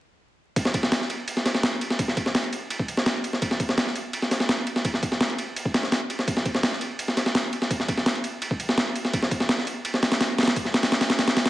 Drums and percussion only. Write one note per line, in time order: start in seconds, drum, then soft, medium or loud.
0.56 kick loud
0.56 ride medium
0.65 snare soft
0.74 kick medium
0.74 ride medium
0.83 snare soft
0.92 snare loud
0.92 ride medium
1.01 snare soft
1.10 ride medium
1.28 ride medium
1.37 snare soft
1.46 snare medium
1.46 ride medium
1.55 snare medium
1.63 snare loud
1.63 ride medium
1.81 ride medium
1.90 snare medium
1.99 kick loud
1.99 ride medium
2.08 snare soft
2.17 kick medium
2.17 ride medium
2.26 snare soft
2.35 snare loud
2.35 ride medium
2.44 ride soft
2.53 ride medium
2.70 ride medium
2.80 kick medium
2.88 ride medium
2.97 snare medium
3.06 snare loud
3.06 ride medium
3.24 ride medium
3.33 snare soft
3.42 kick loud
3.42 ride medium
3.51 snare soft
3.60 kick medium
3.60 ride medium
3.69 snare soft
3.78 snare loud
3.78 ride medium
3.87 snare soft
3.95 ride medium
4.13 ride medium
4.22 snare soft
4.31 snare medium
4.31 ride medium
4.40 snare medium
4.49 snare loud
4.49 ride medium
4.67 ride medium
4.76 snare medium
4.85 kick loud
4.85 ride medium
4.94 snare soft
5.03 kick medium
5.03 ride medium
5.12 snare soft
5.21 snare loud
5.21 ride medium
5.30 ride soft
5.38 ride medium
5.56 ride medium
5.65 kick medium
5.74 snare loud
5.74 ride medium
5.83 snare medium
5.92 snare loud
5.92 ride medium
6.10 ride medium
6.19 snare soft
6.28 kick loud
6.28 ride medium
6.37 snare soft
6.46 kick medium
6.46 ride medium
6.55 snare soft
6.63 snare loud
6.63 ride medium
6.72 snare soft
6.81 ride medium
6.99 ride medium
7.08 snare soft
7.17 snare medium
7.17 ride medium
7.26 snare medium
7.35 snare loud
7.35 ride medium
7.53 ride medium
7.62 snare medium
7.71 kick loud
7.71 ride medium
7.80 snare soft
7.88 kick medium
7.88 ride medium
7.98 snare soft
8.06 snare loud
8.06 ride medium
8.15 ride soft
8.24 ride medium
8.42 ride medium
8.51 kick medium
8.60 ride medium
8.69 snare medium
8.78 snare loud
8.78 ride medium
8.96 ride medium
9.05 snare soft
9.13 kick loud
9.13 ride medium
9.22 snare soft
9.31 kick medium
9.31 ride medium
9.40 snare soft
9.49 snare loud
9.49 ride medium
9.58 snare soft
9.67 ride medium
9.85 ride medium
9.94 snare soft
10.03 snare loud
10.03 ride medium
10.12 snare loud
10.12 ride medium
10.21 snare loud
10.21 ride medium
10.38 snare medium
10.38 ride medium
10.43 snare medium
10.43 ride medium
10.48 snare loud
10.48 ride medium
10.56 kick loud
10.56 ride medium
10.65 snare soft
10.74 snare loud
10.74 ride medium
10.83 snare loud
10.83 ride medium
10.92 snare loud
10.92 ride medium
11.01 snare loud
11.01 ride medium
11.10 snare loud
11.10 ride medium
11.19 snare loud
11.19 ride medium
11.28 snare loud
11.28 ride medium
11.37 snare loud
11.37 ride medium
11.46 snare loud
11.46 ride medium